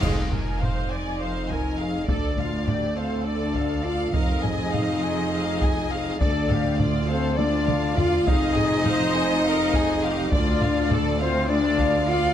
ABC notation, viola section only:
X:1
M:7/8
L:1/8
Q:1/4=102
K:Fdor
V:1 name="Viola section"
A B c d c B A | =A F G A4 | B A6 | =A G F A F3 |
A2 c2 B A G | F2 =A F4 |]